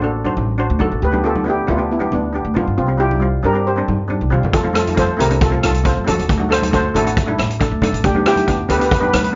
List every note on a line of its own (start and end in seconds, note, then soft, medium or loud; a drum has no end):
0.00 0.32 A1 medium
0.00 0.76 A#3 medium
0.00 0.76 D4 medium
0.00 0.16 D4 medium
0.00 0.17 F#4 medium
0.00 0.17 A4 medium
0.25 0.45 D4 medium
0.25 0.45 F#4 medium
0.25 0.46 C5 medium
0.25 high conga medium
0.37 0.66 A1 medium
0.37 high conga medium
0.58 0.72 D4 medium
0.58 0.72 F#4 medium
0.58 0.72 C5 loud
0.70 0.79 D2 loud
0.79 0.91 D3 loud
0.79 1.00 D4 medium
0.79 1.00 F#4 medium
0.79 1.01 A4 loud
0.79 high conga medium
0.79 low conga medium
0.92 1.01 A1 medium
1.02 1.60 D2 loud
1.02 1.23 G4 medium
1.02 1.26 B4 medium
1.12 1.19 B3 medium
1.12 1.20 D4 medium
1.12 1.20 G4 medium
1.12 high conga medium
1.24 1.37 B3 medium
1.24 1.37 D4 medium
1.24 1.45 F4 medium
1.24 1.38 G4 medium
1.24 1.48 A4 loud
1.35 high conga medium
1.44 1.59 B3 medium
1.44 1.59 D4 medium
1.44 1.68 D4 medium
1.44 1.60 E4 medium
1.50 1.69 G4 loud
1.67 2.07 D2 medium
1.67 1.74 B3 medium
1.67 1.75 D4 medium
1.67 1.89 D4 medium
1.67 1.75 E4 medium
1.67 1.92 F4 medium
1.67 low conga medium
1.77 1.91 B3 medium
1.77 1.92 D4 medium
1.77 1.92 G4 medium
1.91 2.11 B3 medium
1.91 2.14 E4 medium
1.99 2.20 B3 medium
1.99 2.20 D4 medium
1.99 2.21 G4 medium
1.99 high conga medium
2.12 2.41 D2 medium
2.12 2.53 B3 medium
2.12 2.56 D4 medium
2.12 high conga medium
2.33 2.47 B3 medium
2.33 2.47 D4 medium
2.33 2.48 G4 medium
2.45 2.54 D2 medium
2.54 2.66 D3 loud
2.54 2.75 B3 medium
2.54 2.75 D4 medium
2.54 2.77 D4 medium
2.54 2.76 F4 medium
2.54 2.77 F4 medium
2.54 high conga medium
2.54 low conga medium
2.67 2.77 G2 medium
2.78 3.36 C2 medium
2.78 2.88 C4 medium
2.78 2.88 F4 loud
2.87 2.94 G3 medium
2.87 2.95 C4 medium
2.87 2.95 F4 medium
2.98 3.12 G3 medium
2.98 3.12 C4 medium
2.98 3.41 E4 medium
2.98 3.13 F4 medium
2.98 3.45 G4 loud
3.11 high conga medium
3.20 3.34 G3 medium
3.20 3.35 C4 medium
3.20 3.35 F4 medium
3.43 3.83 G2 medium
3.43 3.50 G3 medium
3.43 3.50 C4 medium
3.43 3.51 D4 medium
3.43 3.66 G4 medium
3.43 3.67 A#4 loud
3.53 3.67 G3 medium
3.53 3.68 C4 medium
3.53 3.68 G4 medium
3.67 4.29 G4 medium
3.67 4.28 C5 medium
3.76 3.96 G3 medium
3.76 3.97 C4 medium
3.76 3.97 D4 medium
3.88 4.17 G2 medium
3.88 high conga medium
4.08 4.22 G3 medium
4.08 4.22 C4 medium
4.08 4.23 D4 medium
4.08 high conga medium
4.21 4.30 C2 medium
4.21 high conga medium
4.30 4.42 C3 medium
4.30 4.51 G3 medium
4.30 4.51 C4 medium
4.30 4.52 F4 medium
4.30 low conga medium
4.43 4.53 G2 medium
4.43 low conga medium
4.53 5.12 F2 loud
4.53 4.75 F4 medium
4.53 4.75 A4 medium
4.53 kick loud
4.53 closed hi-hat medium
4.63 4.70 A3 medium
4.63 4.71 C4 medium
4.63 4.71 F4 medium
4.63 high conga medium
4.73 4.88 A3 medium
4.73 4.88 C4 medium
4.73 4.88 F4 medium
4.73 4.96 F4 medium
4.73 4.97 A4 loud
4.73 cross-stick medium
4.73 closed hi-hat medium
4.87 closed hi-hat medium
4.87 high conga medium
4.95 5.09 A3 medium
4.95 5.10 C4 medium
4.95 5.10 F4 medium
4.95 5.18 A4 medium
4.95 kick medium
4.95 closed hi-hat medium
4.99 5.19 C5 loud
5.17 5.58 C2 medium
5.17 5.25 A3 medium
5.17 5.25 C4 medium
5.17 5.26 E4 medium
5.17 5.40 G4 medium
5.17 5.42 A#4 loud
5.17 closed hi-hat medium
5.21 low conga medium
5.29 5.43 A3 medium
5.29 5.44 C4 medium
5.29 5.44 D4 medium
5.29 closed hi-hat medium
5.41 5.62 F4 medium
5.41 5.64 A4 medium
5.41 kick loud
5.41 closed hi-hat medium
5.49 5.71 A3 medium
5.49 5.71 C4 medium
5.49 5.72 F4 medium
5.54 high conga medium
5.63 5.93 C2 medium
5.63 5.84 F4 medium
5.63 5.84 A4 loud
5.63 cross-stick medium
5.63 closed hi-hat medium
5.63 high conga medium
5.74 closed hi-hat medium
5.84 5.97 A3 medium
5.84 5.98 C4 medium
5.84 5.98 F4 medium
5.84 6.05 A4 medium
5.84 6.08 C5 medium
5.84 kick medium
5.84 closed hi-hat medium
5.97 6.06 F2 medium
6.05 6.25 A3 medium
6.05 6.26 C4 medium
6.05 6.27 D4 medium
6.05 6.48 F#4 medium
6.05 6.50 A4 medium
6.05 closed hi-hat loud
6.05 high conga medium
6.05 low conga medium
6.09 6.18 F3 medium
6.19 6.29 D#2 medium
6.19 closed hi-hat medium
6.29 6.87 D2 loud
6.29 kick loud
6.29 closed hi-hat medium
6.38 6.45 A3 medium
6.38 6.46 D4 medium
6.38 6.46 F#4 medium
6.38 high conga medium
6.49 6.63 A3 medium
6.49 6.64 D4 medium
6.49 6.64 A4 medium
6.49 6.61 A4 medium
6.49 6.62 C5 loud
6.49 cross-stick medium
6.49 closed hi-hat medium
6.62 closed hi-hat medium
6.62 high conga medium
6.71 6.85 A3 medium
6.71 6.86 D4 medium
6.71 6.86 F#4 medium
6.71 6.94 A4 medium
6.71 6.96 C5 loud
6.71 kick medium
6.71 closed hi-hat medium
6.94 7.33 A1 loud
6.94 7.01 A3 medium
6.94 7.01 D4 medium
6.94 7.02 E4 medium
6.94 7.79 F#4 medium
6.94 7.79 A4 loud
6.94 closed hi-hat medium
6.94 low conga medium
7.05 7.18 A3 medium
7.05 7.19 D4 medium
7.05 7.19 F#4 medium
7.05 closed hi-hat medium
7.17 kick loud
7.17 closed hi-hat medium
7.26 7.47 A3 medium
7.26 7.47 D4 medium
7.26 7.48 E4 loud
7.26 high conga medium
7.38 7.68 A1 medium
7.38 cross-stick medium
7.38 closed hi-hat medium
7.38 high conga medium
7.50 closed hi-hat medium
7.60 7.73 A3 medium
7.60 7.74 D4 medium
7.60 7.74 A4 loud
7.60 kick medium
7.60 closed hi-hat medium
7.71 7.81 D2 loud
7.82 7.92 D3 loud
7.82 8.02 A3 loud
7.82 8.02 D4 medium
7.82 8.03 A4 loud
7.82 closed hi-hat medium
7.82 high conga medium
7.82 low conga medium
7.92 8.02 A1 medium
7.92 closed hi-hat medium
8.04 8.62 D2 loud
8.04 8.25 D4 medium
8.04 8.26 G4 loud
8.04 kick loud
8.04 closed hi-hat medium
8.15 8.21 B3 medium
8.15 8.22 D4 medium
8.15 8.22 G4 medium
8.15 high conga medium
8.26 8.39 B3 medium
8.26 8.39 D4 medium
8.26 8.67 E4 medium
8.26 8.40 G4 loud
8.26 8.69 G4 loud
8.26 cross-stick loud
8.26 closed hi-hat medium
8.36 closed hi-hat medium
8.36 high conga medium
8.47 8.61 B3 medium
8.47 8.61 D4 medium
8.47 8.62 G4 medium
8.47 kick medium
8.47 closed hi-hat medium
8.69 9.08 D2 medium
8.69 8.76 B3 medium
8.69 8.76 D4 medium
8.69 8.77 G4 medium
8.69 8.77 A4 medium
8.69 8.76 B4 loud
8.69 closed hi-hat medium
8.69 low conga medium
8.78 8.93 B3 medium
8.78 8.93 D4 medium
8.78 8.94 G4 medium
8.78 8.84 B4 medium
8.78 closed hi-hat medium
8.86 8.91 B4 medium
8.91 8.99 B4 medium
8.91 kick loud
8.91 closed hi-hat medium
9.00 9.21 B3 medium
9.00 9.22 D4 medium
9.00 9.22 G4 medium
9.00 9.07 B4 medium
9.00 high conga medium
9.08 9.13 B4 medium
9.13 9.35 D2 loud
9.13 9.22 B4 medium
9.13 cross-stick loud
9.13 closed hi-hat medium
9.13 high conga medium
9.23 9.30 B4 medium
9.23 closed hi-hat medium
9.32 9.35 B3 medium